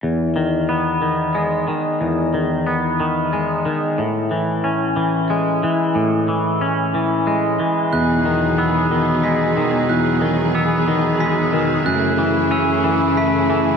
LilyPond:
<<
  \new Staff \with { instrumentName = "Glockenspiel" } { \time 6/8 \key e \major \tempo 4. = 61 r2. | r2. | r2. | r2. |
fis'''4 e'''4 b'''4 | fis'''4 e'''4 b'''4 | fis'''4 e'''4 b'''4 | }
  \new Staff \with { instrumentName = "String section" } { \clef bass \time 6/8 \key e \major << { r2. | r2. | r2. | r2. |
gis'2.~ | gis'2.~ | gis'2. | } \\ { r2. | r2. | r2. | r2. |
<e, b, fis dis'>2.~ | <e, b, fis dis'>2. | <fis, cis a e'>2. | } >> }
  \new Staff \with { instrumentName = "Clean electric guitar" } { \clef bass \time 6/8 \key e \major e,8 dis8 b8 dis8 gis8 dis8 | e,8 dis8 b8 dis8 gis8 dis8 | a,8 e8 cis'8 e8 gis8 e8 | a,8 e8 cis'8 e8 gis8 e8 |
e,8 dis8 b8 dis8 gis8 dis8 | e,8 dis8 b8 dis8 gis8 dis8 | fis,8 e8 cis'8 e8 a8 e8 | }
>>